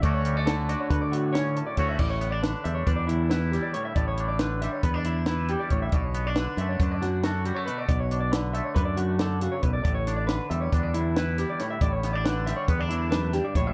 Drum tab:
CC |---------|x--------|---------|---------|
HH |xxxxxxxxx|-xxxxxxxx|xxxxxxxxx|xxxxxxxxx|
SD |--o---o--|--o---oo-|--oo--o--|--o--oo--|
BD |o---o---o|o---o----|o---o---o|o---o----|

CC |---------|---------|---------|
HH |xxxxxxxxx|xxxxxxxxx|xxxxxxxxx|
SD |--o---o--|-oo---ooo|-ooo--oo-|
BD |o---o---o|o---o----|o---o---o|